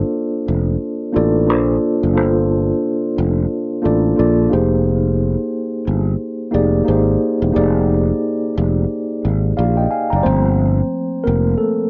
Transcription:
Already playing: A#3 D4 F4 A4 C5
0.48 F1
1.12 A1 A#3 D4 F4 A4
1.16 D5
1.46 A#1 A#3 D4 F4 A4 C5
2.03 F#1
2.14 G1 A#3 D4 F4 A4 C5
3.18 F1
3.82 A1 A#3 D4 F4 A4 D5
4.16 A#1 A#3 D4 F4 A4 D5
4.49 F1 A#3 D#4 G4 G#4 C5
5.87 G1
6.51 F1 A#3 D#4 G4 G#4 D5
6.85 G#1 A#3 D#4 G4 G#4 C5
7.42 E1
7.52 F1 A#3 D#4 G4 G#4
7.56 D5
8.58 F1
9.25 G#1
9.57 A#1 D5 F5
9.77 D#5 G5
9.90 F5 G#5
10.10 F#1 G5 A#5
10.16 D5
10.23 G1 F3 A3 A#3 C4 C5
11.24 F1 A#3 A#4
11.58 A3 A4

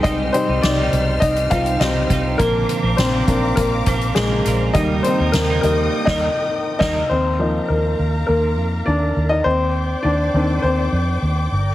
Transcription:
Already playing: G3 G#3 A#3 C4 D#4 G#4 A#4 C5 G5
0.03 C2 C3 G3 C4 D#4 G4 D#5 F6, kick, closed hi-hat
0.33 G3 C4 D#4 C5, closed hi-hat
0.48 C2 C4 D#4 G4
0.62 C2 D#4 D5, snare, closed hi-hat
0.77 C4 D#4 G4
0.93 C2, closed hi-hat
1.20 C2 D#4 D#5, kick, closed hi-hat
1.36 closed hi-hat
1.50 C2 G3 C4 D#4 F4 G4 F5, kick, closed hi-hat
1.66 closed hi-hat
1.80 C2 G3 C4 D#4 G4 D#5, snare, closed hi-hat
2.09 C2 G3 C4 D#4 G4, kick, closed hi-hat
2.38 A#1 A#2 D3 F3 A#3 C4 D4 A#4 F5 A#5 D6, kick, closed hi-hat
2.69 closed hi-hat
2.83 A#1 F3 C4 D4 A#4
2.97 A#1 C4 C5, snare, closed hi-hat
3.12 F3 C4 D4 A#4
3.27 A#1 A#3 C4 D4, kick, closed hi-hat
3.56 A#1 A#3 A#4, kick, closed hi-hat
3.86 A#1 F3 C4 D4 A#4, kick, closed hi-hat
4.01 closed hi-hat
4.15 A#1 F3 G#3 C4 D4 G#4 A#4, snare, closed hi-hat
4.45 A#1 F3 C4 D4 A#4, snare, closed hi-hat
4.73 D#2 D#3 G3 A#3 D#4 A#4 D#5 G5 D#6, kick, closed hi-hat
5.03 C4 C5, closed hi-hat
5.18 D#2 A#3 D#4 A#4
5.32 D#2 A#3 A#4, snare, closed hi-hat
5.48 A#3 D#4 A#4
5.61 D#2 G3 A#3 D#4 A#4, closed hi-hat
6.05 D#2 G3 A#3 D#4 D#5, kick, snare, crash
6.10 A#4
6.79 D#2 G3 A#3 D#4 D#5, kick, snare, crash
6.83 A#4
7.09 D#2 C4 A#4 C5 F5 A#5
7.39 F3 A#3 D#4
7.68 D#2 A#3 A#4
7.99 D#2
8.27 D#2 A#3 A#4
8.58 F2
8.86 D#2 D4 D5
9.16 D#2
9.29 D#4 D#5
9.44 D#2 C4 C5 D5 G5 D6
10.03 D#2 D4 D5
10.34 D#2 D#3 C4 D4
10.62 D#2 C4 C5
10.92 F2
11.22 D#2
11.52 G1 A#4 D5

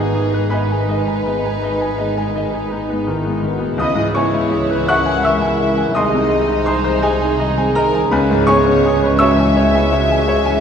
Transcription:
Already playing: G#1 G#2 D#3 G#3 B3 D#4 F#4 G#4 B4 D#5 F#5 G#5
0.14 D#3 G#4
0.32 G#3 B4
0.49 D#3 G#3 B3 B4 D#5 G#5 B5
0.70 G#3 G#5
0.89 D#3 D#5
1.07 G#3 G#5
1.26 B3 D#5
1.45 G#3 G#5
1.62 D#3 G#4 D#5
1.81 G#3 G#5
1.98 B3 D#5
2.17 G#3 G#5
2.36 D#3 D#5
2.54 G#3 G#4
2.72 B3 D#4
2.90 G#3 B3
3.07 D#3 E4
3.24 G#3 B3
3.42 D#3 B3 F#4
3.59 B3
3.63 G#3
3.78 C#2 C#3 E3 G#3 E4 G#4 D#5 B5 D#6
3.95 G#2 E3
4.14 G#3 B3 C#5 G#5 C#6
4.34 B3 E4
4.51 G#3 G#4
4.70 E3 B4
4.86 C#3 A#4 E5 F#5 C#6 F#6
5.06 E3 G#5
5.22 G#3 E5 E6
5.26 C#6
5.41 B3 G#5
5.59 G#3 E5
5.76 E3 G#5
5.93 C2 C3 D#3 G#3 D#4 G#4 D#5 C6 D#6
6.12 C3 D#3
6.30 G#3 C4
6.47 C4 D#4
6.65 G#3 G#4 C5 C6
6.84 D#3 C5
7.02 C3 D#3 G#3 G#4 D#5 G#5
7.20 D#3 G#5
7.39 G#3 D#5
7.57 C4 G#5
7.75 G#3 A#4 D#5 A#5
7.93 D#3 G#5
8.11 C#2 C#3 G#3 C#4 B4 G#5 B5
8.29 G#2 E3
8.45 G#3 B3 C#5 G#5 C#6
8.65 B3 C#4
8.84 G#3 G#4
9.01 E3 B4
9.18 C#3 G#3 F#4 C#5 E5 C#6 E6
9.37 E3 G#5
9.55 G#3 E4 C#5
9.73 B3 G#5
9.91 G#3 F#4 C#5
10.09 E3 G#5
10.27 C#3 G#4 C#5
10.45 E3 G#5

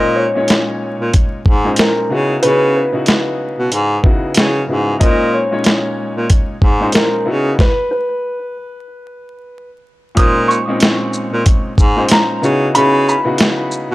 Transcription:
Already playing: A#2 G#3 C#4 D#4 C5 D#5
0.16 C#5
0.35 A#2 G#3 C#4 D#4 C#5
0.48 snare, closed hi-hat
1.01 A#2
1.14 kick, closed hi-hat
1.46 G#2, kick
1.64 A#2 G#3 C#4 D#4 C5
1.76 A#4, snare, closed hi-hat
2.10 C#3 B3 D#4 E4 F#4
2.42 C#3 B3 D#4 E4 F#4 B4, closed hi-hat
2.76 B4
2.92 C#3 B3 D#4 E4 F#4
3.06 snare, closed hi-hat
3.59 B2
3.72 G#2, closed hi-hat
4.03 C#3 B3 D#4 E4 F#4, kick
4.34 C#3, snare, closed hi-hat
4.68 G#2 C#3 B3 D#4 E4 F#4
4.99 A#2 G#3 C#4 D#4 C5 D#5, kick, closed hi-hat
5.34 C#5
5.51 A#2 G#3 C#4 D#4 C#5
5.64 snare, closed hi-hat
6.17 A#2
6.30 kick, closed hi-hat
6.62 G#2, kick
6.80 A#2 G#3 C#4 D#4 C5
6.92 A#4, snare, closed hi-hat
7.25 C#3 B3 D#4 E4 F#4
7.59 B4, kick, snare
7.91 B4
10.15 A#2 G#3 C#4 D#4 C5 D#6, kick, closed hi-hat
10.48 C#6, shaker
10.67 A#2 G#3 C4 C#4 D#4
10.80 snare, closed hi-hat
11.13 shaker
11.33 A#2
11.46 kick, closed hi-hat
11.78 G#2, kick, shaker
11.96 A#2 G#3 C#4 D#4 C5
12.09 A#5, snare, closed hi-hat
12.42 C#3 B3 D#4 E4 F#4, shaker
12.75 C#3 B3 D#4 E4 F#4 B5, closed hi-hat
13.09 B5, shaker
13.24 C#3 B3 D#4 E4 F#4
13.38 snare, closed hi-hat
13.71 shaker
13.91 B2

